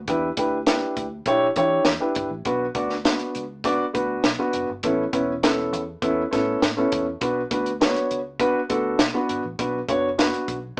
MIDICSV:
0, 0, Header, 1, 4, 480
1, 0, Start_track
1, 0, Key_signature, 2, "minor"
1, 0, Tempo, 594648
1, 66, Time_signature, 4, 2, 24, 8
1, 8717, End_track
2, 0, Start_track
2, 0, Title_t, "Upright piano"
2, 0, Program_c, 0, 0
2, 64, Note_on_c, 0, 62, 81
2, 68, Note_on_c, 0, 64, 78
2, 71, Note_on_c, 0, 67, 67
2, 75, Note_on_c, 0, 71, 94
2, 215, Note_off_c, 0, 62, 0
2, 217, Note_off_c, 0, 64, 0
2, 219, Note_off_c, 0, 67, 0
2, 221, Note_off_c, 0, 71, 0
2, 304, Note_on_c, 0, 62, 77
2, 305, Note_on_c, 0, 64, 66
2, 311, Note_on_c, 0, 67, 69
2, 314, Note_on_c, 0, 71, 88
2, 455, Note_off_c, 0, 62, 0
2, 456, Note_off_c, 0, 64, 0
2, 458, Note_off_c, 0, 67, 0
2, 460, Note_off_c, 0, 71, 0
2, 539, Note_on_c, 0, 62, 76
2, 542, Note_on_c, 0, 64, 66
2, 546, Note_on_c, 0, 67, 68
2, 549, Note_on_c, 0, 71, 73
2, 842, Note_off_c, 0, 62, 0
2, 844, Note_off_c, 0, 64, 0
2, 846, Note_off_c, 0, 67, 0
2, 847, Note_off_c, 0, 71, 0
2, 1022, Note_on_c, 0, 62, 85
2, 1023, Note_on_c, 0, 64, 82
2, 1028, Note_on_c, 0, 67, 87
2, 1030, Note_on_c, 0, 73, 101
2, 1173, Note_off_c, 0, 62, 0
2, 1174, Note_off_c, 0, 64, 0
2, 1176, Note_off_c, 0, 67, 0
2, 1177, Note_off_c, 0, 73, 0
2, 1262, Note_on_c, 0, 62, 75
2, 1264, Note_on_c, 0, 64, 70
2, 1269, Note_on_c, 0, 67, 74
2, 1271, Note_on_c, 0, 73, 97
2, 1488, Note_off_c, 0, 62, 0
2, 1489, Note_off_c, 0, 64, 0
2, 1491, Note_off_c, 0, 67, 0
2, 1493, Note_off_c, 0, 73, 0
2, 1617, Note_on_c, 0, 62, 81
2, 1619, Note_on_c, 0, 64, 72
2, 1622, Note_on_c, 0, 67, 66
2, 1627, Note_on_c, 0, 71, 84
2, 1846, Note_off_c, 0, 62, 0
2, 1846, Note_off_c, 0, 64, 0
2, 1848, Note_off_c, 0, 67, 0
2, 1851, Note_off_c, 0, 71, 0
2, 1977, Note_on_c, 0, 59, 78
2, 1980, Note_on_c, 0, 62, 68
2, 1986, Note_on_c, 0, 66, 81
2, 1989, Note_on_c, 0, 71, 86
2, 2130, Note_off_c, 0, 59, 0
2, 2132, Note_off_c, 0, 62, 0
2, 2134, Note_off_c, 0, 66, 0
2, 2136, Note_off_c, 0, 71, 0
2, 2215, Note_on_c, 0, 59, 70
2, 2219, Note_on_c, 0, 62, 73
2, 2222, Note_on_c, 0, 66, 76
2, 2226, Note_on_c, 0, 74, 80
2, 2369, Note_off_c, 0, 59, 0
2, 2371, Note_off_c, 0, 62, 0
2, 2373, Note_off_c, 0, 66, 0
2, 2375, Note_off_c, 0, 74, 0
2, 2457, Note_on_c, 0, 59, 68
2, 2465, Note_on_c, 0, 62, 65
2, 2465, Note_on_c, 0, 66, 61
2, 2470, Note_on_c, 0, 71, 73
2, 2760, Note_off_c, 0, 59, 0
2, 2764, Note_off_c, 0, 62, 0
2, 2764, Note_off_c, 0, 66, 0
2, 2767, Note_off_c, 0, 71, 0
2, 2941, Note_on_c, 0, 59, 81
2, 2944, Note_on_c, 0, 62, 80
2, 2947, Note_on_c, 0, 66, 83
2, 2950, Note_on_c, 0, 74, 105
2, 3092, Note_off_c, 0, 59, 0
2, 3093, Note_off_c, 0, 62, 0
2, 3095, Note_off_c, 0, 66, 0
2, 3096, Note_off_c, 0, 74, 0
2, 3175, Note_on_c, 0, 59, 74
2, 3179, Note_on_c, 0, 62, 74
2, 3181, Note_on_c, 0, 66, 80
2, 3186, Note_on_c, 0, 71, 88
2, 3404, Note_off_c, 0, 59, 0
2, 3406, Note_off_c, 0, 62, 0
2, 3407, Note_off_c, 0, 66, 0
2, 3410, Note_off_c, 0, 71, 0
2, 3539, Note_on_c, 0, 59, 82
2, 3541, Note_on_c, 0, 62, 69
2, 3547, Note_on_c, 0, 66, 75
2, 3548, Note_on_c, 0, 71, 89
2, 3766, Note_off_c, 0, 59, 0
2, 3767, Note_off_c, 0, 62, 0
2, 3770, Note_off_c, 0, 66, 0
2, 3770, Note_off_c, 0, 71, 0
2, 3903, Note_on_c, 0, 59, 84
2, 3908, Note_on_c, 0, 64, 73
2, 3909, Note_on_c, 0, 61, 76
2, 3911, Note_on_c, 0, 69, 84
2, 4053, Note_off_c, 0, 59, 0
2, 4055, Note_off_c, 0, 64, 0
2, 4056, Note_off_c, 0, 61, 0
2, 4057, Note_off_c, 0, 69, 0
2, 4139, Note_on_c, 0, 59, 79
2, 4141, Note_on_c, 0, 61, 78
2, 4145, Note_on_c, 0, 64, 66
2, 4148, Note_on_c, 0, 71, 75
2, 4291, Note_off_c, 0, 59, 0
2, 4292, Note_off_c, 0, 61, 0
2, 4294, Note_off_c, 0, 64, 0
2, 4295, Note_off_c, 0, 71, 0
2, 4380, Note_on_c, 0, 59, 70
2, 4383, Note_on_c, 0, 61, 67
2, 4386, Note_on_c, 0, 64, 64
2, 4390, Note_on_c, 0, 69, 87
2, 4682, Note_off_c, 0, 59, 0
2, 4683, Note_off_c, 0, 61, 0
2, 4685, Note_off_c, 0, 64, 0
2, 4687, Note_off_c, 0, 69, 0
2, 4859, Note_on_c, 0, 59, 90
2, 4861, Note_on_c, 0, 61, 76
2, 4865, Note_on_c, 0, 64, 86
2, 4869, Note_on_c, 0, 69, 89
2, 5011, Note_off_c, 0, 59, 0
2, 5012, Note_off_c, 0, 61, 0
2, 5014, Note_off_c, 0, 64, 0
2, 5016, Note_off_c, 0, 69, 0
2, 5094, Note_on_c, 0, 59, 78
2, 5096, Note_on_c, 0, 61, 80
2, 5103, Note_on_c, 0, 64, 68
2, 5105, Note_on_c, 0, 69, 100
2, 5323, Note_off_c, 0, 59, 0
2, 5325, Note_off_c, 0, 61, 0
2, 5328, Note_off_c, 0, 64, 0
2, 5329, Note_off_c, 0, 69, 0
2, 5461, Note_on_c, 0, 59, 76
2, 5464, Note_on_c, 0, 61, 80
2, 5468, Note_on_c, 0, 64, 73
2, 5469, Note_on_c, 0, 69, 89
2, 5687, Note_off_c, 0, 59, 0
2, 5689, Note_off_c, 0, 61, 0
2, 5691, Note_off_c, 0, 64, 0
2, 5691, Note_off_c, 0, 69, 0
2, 5818, Note_on_c, 0, 59, 86
2, 5823, Note_on_c, 0, 62, 74
2, 5828, Note_on_c, 0, 66, 72
2, 5830, Note_on_c, 0, 71, 87
2, 5970, Note_off_c, 0, 59, 0
2, 5973, Note_off_c, 0, 62, 0
2, 5975, Note_off_c, 0, 66, 0
2, 5976, Note_off_c, 0, 71, 0
2, 6058, Note_on_c, 0, 59, 75
2, 6065, Note_on_c, 0, 66, 71
2, 6066, Note_on_c, 0, 62, 70
2, 6071, Note_on_c, 0, 71, 90
2, 6210, Note_off_c, 0, 59, 0
2, 6214, Note_off_c, 0, 62, 0
2, 6214, Note_off_c, 0, 66, 0
2, 6217, Note_off_c, 0, 71, 0
2, 6300, Note_on_c, 0, 59, 78
2, 6303, Note_on_c, 0, 62, 68
2, 6307, Note_on_c, 0, 66, 66
2, 6308, Note_on_c, 0, 73, 78
2, 6602, Note_off_c, 0, 59, 0
2, 6603, Note_off_c, 0, 62, 0
2, 6606, Note_off_c, 0, 66, 0
2, 6606, Note_off_c, 0, 73, 0
2, 6778, Note_on_c, 0, 59, 84
2, 6778, Note_on_c, 0, 62, 85
2, 6783, Note_on_c, 0, 66, 84
2, 6786, Note_on_c, 0, 71, 107
2, 6930, Note_off_c, 0, 59, 0
2, 6931, Note_off_c, 0, 62, 0
2, 6933, Note_off_c, 0, 66, 0
2, 6934, Note_off_c, 0, 71, 0
2, 7017, Note_on_c, 0, 59, 80
2, 7019, Note_on_c, 0, 62, 76
2, 7023, Note_on_c, 0, 66, 76
2, 7026, Note_on_c, 0, 69, 89
2, 7245, Note_off_c, 0, 59, 0
2, 7246, Note_off_c, 0, 62, 0
2, 7248, Note_off_c, 0, 66, 0
2, 7250, Note_off_c, 0, 69, 0
2, 7374, Note_on_c, 0, 59, 82
2, 7376, Note_on_c, 0, 62, 73
2, 7383, Note_on_c, 0, 66, 73
2, 7385, Note_on_c, 0, 71, 81
2, 7604, Note_off_c, 0, 59, 0
2, 7605, Note_off_c, 0, 62, 0
2, 7608, Note_off_c, 0, 66, 0
2, 7609, Note_off_c, 0, 71, 0
2, 7739, Note_on_c, 0, 59, 78
2, 7742, Note_on_c, 0, 62, 70
2, 7745, Note_on_c, 0, 66, 69
2, 7748, Note_on_c, 0, 71, 88
2, 7891, Note_off_c, 0, 59, 0
2, 7893, Note_off_c, 0, 62, 0
2, 7894, Note_off_c, 0, 66, 0
2, 7895, Note_off_c, 0, 71, 0
2, 7978, Note_on_c, 0, 59, 73
2, 7979, Note_on_c, 0, 62, 77
2, 7982, Note_on_c, 0, 66, 66
2, 7987, Note_on_c, 0, 73, 87
2, 8131, Note_off_c, 0, 59, 0
2, 8131, Note_off_c, 0, 62, 0
2, 8132, Note_off_c, 0, 66, 0
2, 8135, Note_off_c, 0, 73, 0
2, 8216, Note_on_c, 0, 59, 64
2, 8219, Note_on_c, 0, 62, 65
2, 8220, Note_on_c, 0, 66, 73
2, 8227, Note_on_c, 0, 71, 82
2, 8520, Note_off_c, 0, 59, 0
2, 8521, Note_off_c, 0, 62, 0
2, 8522, Note_off_c, 0, 66, 0
2, 8525, Note_off_c, 0, 71, 0
2, 8717, End_track
3, 0, Start_track
3, 0, Title_t, "Fingered electric bass"
3, 0, Program_c, 1, 33
3, 65, Note_on_c, 1, 40, 97
3, 239, Note_off_c, 1, 40, 0
3, 305, Note_on_c, 1, 38, 79
3, 652, Note_off_c, 1, 38, 0
3, 783, Note_on_c, 1, 38, 82
3, 958, Note_off_c, 1, 38, 0
3, 1017, Note_on_c, 1, 35, 73
3, 1193, Note_off_c, 1, 35, 0
3, 1265, Note_on_c, 1, 52, 91
3, 1438, Note_off_c, 1, 52, 0
3, 1499, Note_on_c, 1, 40, 87
3, 1587, Note_off_c, 1, 40, 0
3, 1750, Note_on_c, 1, 31, 77
3, 1834, Note_off_c, 1, 31, 0
3, 1854, Note_on_c, 1, 33, 90
3, 1944, Note_off_c, 1, 33, 0
3, 1984, Note_on_c, 1, 35, 107
3, 2157, Note_off_c, 1, 35, 0
3, 2220, Note_on_c, 1, 38, 87
3, 2569, Note_off_c, 1, 38, 0
3, 2709, Note_on_c, 1, 37, 95
3, 3054, Note_off_c, 1, 37, 0
3, 3189, Note_on_c, 1, 38, 90
3, 3361, Note_off_c, 1, 38, 0
3, 3424, Note_on_c, 1, 35, 90
3, 3510, Note_off_c, 1, 35, 0
3, 3662, Note_on_c, 1, 30, 79
3, 3749, Note_off_c, 1, 30, 0
3, 3788, Note_on_c, 1, 31, 95
3, 3873, Note_off_c, 1, 31, 0
3, 3907, Note_on_c, 1, 33, 99
3, 4079, Note_off_c, 1, 33, 0
3, 4144, Note_on_c, 1, 28, 101
3, 4624, Note_off_c, 1, 28, 0
3, 4624, Note_on_c, 1, 40, 87
3, 4797, Note_off_c, 1, 40, 0
3, 4863, Note_on_c, 1, 40, 72
3, 5036, Note_off_c, 1, 40, 0
3, 5110, Note_on_c, 1, 45, 98
3, 5281, Note_off_c, 1, 45, 0
3, 5343, Note_on_c, 1, 45, 103
3, 5517, Note_off_c, 1, 45, 0
3, 5592, Note_on_c, 1, 40, 76
3, 5762, Note_off_c, 1, 40, 0
3, 5825, Note_on_c, 1, 35, 107
3, 5998, Note_off_c, 1, 35, 0
3, 6066, Note_on_c, 1, 38, 97
3, 6413, Note_off_c, 1, 38, 0
3, 6548, Note_on_c, 1, 37, 85
3, 6894, Note_off_c, 1, 37, 0
3, 7026, Note_on_c, 1, 38, 91
3, 7199, Note_off_c, 1, 38, 0
3, 7260, Note_on_c, 1, 35, 93
3, 7347, Note_off_c, 1, 35, 0
3, 7499, Note_on_c, 1, 31, 77
3, 7587, Note_off_c, 1, 31, 0
3, 7621, Note_on_c, 1, 33, 90
3, 7708, Note_off_c, 1, 33, 0
3, 7743, Note_on_c, 1, 35, 102
3, 7917, Note_off_c, 1, 35, 0
3, 7981, Note_on_c, 1, 30, 89
3, 8329, Note_off_c, 1, 30, 0
3, 8461, Note_on_c, 1, 35, 88
3, 8635, Note_off_c, 1, 35, 0
3, 8717, End_track
4, 0, Start_track
4, 0, Title_t, "Drums"
4, 61, Note_on_c, 9, 42, 82
4, 64, Note_on_c, 9, 36, 97
4, 142, Note_off_c, 9, 42, 0
4, 144, Note_off_c, 9, 36, 0
4, 298, Note_on_c, 9, 42, 89
4, 302, Note_on_c, 9, 36, 97
4, 379, Note_off_c, 9, 42, 0
4, 382, Note_off_c, 9, 36, 0
4, 537, Note_on_c, 9, 42, 95
4, 540, Note_on_c, 9, 38, 109
4, 618, Note_off_c, 9, 42, 0
4, 620, Note_off_c, 9, 38, 0
4, 780, Note_on_c, 9, 42, 61
4, 781, Note_on_c, 9, 36, 78
4, 861, Note_off_c, 9, 42, 0
4, 862, Note_off_c, 9, 36, 0
4, 1014, Note_on_c, 9, 42, 82
4, 1016, Note_on_c, 9, 36, 90
4, 1095, Note_off_c, 9, 42, 0
4, 1097, Note_off_c, 9, 36, 0
4, 1258, Note_on_c, 9, 42, 68
4, 1262, Note_on_c, 9, 36, 85
4, 1338, Note_off_c, 9, 42, 0
4, 1342, Note_off_c, 9, 36, 0
4, 1491, Note_on_c, 9, 38, 96
4, 1491, Note_on_c, 9, 42, 84
4, 1571, Note_off_c, 9, 38, 0
4, 1572, Note_off_c, 9, 42, 0
4, 1736, Note_on_c, 9, 42, 77
4, 1746, Note_on_c, 9, 36, 97
4, 1817, Note_off_c, 9, 42, 0
4, 1827, Note_off_c, 9, 36, 0
4, 1979, Note_on_c, 9, 42, 78
4, 1982, Note_on_c, 9, 36, 101
4, 2059, Note_off_c, 9, 42, 0
4, 2062, Note_off_c, 9, 36, 0
4, 2218, Note_on_c, 9, 42, 86
4, 2219, Note_on_c, 9, 36, 110
4, 2299, Note_off_c, 9, 42, 0
4, 2300, Note_off_c, 9, 36, 0
4, 2337, Note_on_c, 9, 38, 37
4, 2418, Note_off_c, 9, 38, 0
4, 2462, Note_on_c, 9, 42, 99
4, 2465, Note_on_c, 9, 38, 104
4, 2543, Note_off_c, 9, 42, 0
4, 2545, Note_off_c, 9, 38, 0
4, 2577, Note_on_c, 9, 42, 40
4, 2658, Note_off_c, 9, 42, 0
4, 2703, Note_on_c, 9, 42, 59
4, 2783, Note_off_c, 9, 42, 0
4, 2939, Note_on_c, 9, 36, 98
4, 2944, Note_on_c, 9, 42, 80
4, 3020, Note_off_c, 9, 36, 0
4, 3024, Note_off_c, 9, 42, 0
4, 3186, Note_on_c, 9, 36, 89
4, 3188, Note_on_c, 9, 42, 64
4, 3267, Note_off_c, 9, 36, 0
4, 3269, Note_off_c, 9, 42, 0
4, 3420, Note_on_c, 9, 38, 94
4, 3421, Note_on_c, 9, 42, 85
4, 3501, Note_off_c, 9, 38, 0
4, 3501, Note_off_c, 9, 42, 0
4, 3658, Note_on_c, 9, 42, 74
4, 3739, Note_off_c, 9, 42, 0
4, 3900, Note_on_c, 9, 42, 92
4, 3904, Note_on_c, 9, 36, 97
4, 3980, Note_off_c, 9, 42, 0
4, 3985, Note_off_c, 9, 36, 0
4, 4141, Note_on_c, 9, 42, 93
4, 4142, Note_on_c, 9, 36, 102
4, 4222, Note_off_c, 9, 42, 0
4, 4223, Note_off_c, 9, 36, 0
4, 4386, Note_on_c, 9, 42, 101
4, 4389, Note_on_c, 9, 38, 102
4, 4467, Note_off_c, 9, 42, 0
4, 4470, Note_off_c, 9, 38, 0
4, 4629, Note_on_c, 9, 42, 62
4, 4709, Note_off_c, 9, 42, 0
4, 4861, Note_on_c, 9, 36, 99
4, 4862, Note_on_c, 9, 42, 83
4, 4942, Note_off_c, 9, 36, 0
4, 4943, Note_off_c, 9, 42, 0
4, 5107, Note_on_c, 9, 36, 85
4, 5109, Note_on_c, 9, 42, 68
4, 5111, Note_on_c, 9, 38, 30
4, 5188, Note_off_c, 9, 36, 0
4, 5189, Note_off_c, 9, 42, 0
4, 5192, Note_off_c, 9, 38, 0
4, 5346, Note_on_c, 9, 38, 100
4, 5347, Note_on_c, 9, 42, 83
4, 5427, Note_off_c, 9, 38, 0
4, 5428, Note_off_c, 9, 42, 0
4, 5585, Note_on_c, 9, 42, 82
4, 5590, Note_on_c, 9, 36, 101
4, 5666, Note_off_c, 9, 42, 0
4, 5671, Note_off_c, 9, 36, 0
4, 5822, Note_on_c, 9, 42, 84
4, 5825, Note_on_c, 9, 36, 103
4, 5902, Note_off_c, 9, 42, 0
4, 5905, Note_off_c, 9, 36, 0
4, 6062, Note_on_c, 9, 42, 95
4, 6063, Note_on_c, 9, 36, 107
4, 6142, Note_off_c, 9, 42, 0
4, 6144, Note_off_c, 9, 36, 0
4, 6184, Note_on_c, 9, 42, 47
4, 6265, Note_off_c, 9, 42, 0
4, 6307, Note_on_c, 9, 42, 85
4, 6309, Note_on_c, 9, 38, 112
4, 6387, Note_off_c, 9, 42, 0
4, 6390, Note_off_c, 9, 38, 0
4, 6428, Note_on_c, 9, 42, 43
4, 6509, Note_off_c, 9, 42, 0
4, 6545, Note_on_c, 9, 42, 63
4, 6625, Note_off_c, 9, 42, 0
4, 6777, Note_on_c, 9, 36, 95
4, 6779, Note_on_c, 9, 42, 79
4, 6858, Note_off_c, 9, 36, 0
4, 6860, Note_off_c, 9, 42, 0
4, 7020, Note_on_c, 9, 42, 81
4, 7023, Note_on_c, 9, 36, 81
4, 7101, Note_off_c, 9, 42, 0
4, 7103, Note_off_c, 9, 36, 0
4, 7256, Note_on_c, 9, 38, 105
4, 7257, Note_on_c, 9, 42, 92
4, 7337, Note_off_c, 9, 38, 0
4, 7337, Note_off_c, 9, 42, 0
4, 7501, Note_on_c, 9, 42, 77
4, 7582, Note_off_c, 9, 42, 0
4, 7741, Note_on_c, 9, 36, 98
4, 7742, Note_on_c, 9, 42, 89
4, 7822, Note_off_c, 9, 36, 0
4, 7823, Note_off_c, 9, 42, 0
4, 7979, Note_on_c, 9, 36, 106
4, 7981, Note_on_c, 9, 42, 88
4, 8060, Note_off_c, 9, 36, 0
4, 8062, Note_off_c, 9, 42, 0
4, 8224, Note_on_c, 9, 42, 86
4, 8226, Note_on_c, 9, 38, 100
4, 8304, Note_off_c, 9, 42, 0
4, 8307, Note_off_c, 9, 38, 0
4, 8345, Note_on_c, 9, 42, 40
4, 8426, Note_off_c, 9, 42, 0
4, 8461, Note_on_c, 9, 36, 75
4, 8461, Note_on_c, 9, 42, 59
4, 8541, Note_off_c, 9, 36, 0
4, 8542, Note_off_c, 9, 42, 0
4, 8717, End_track
0, 0, End_of_file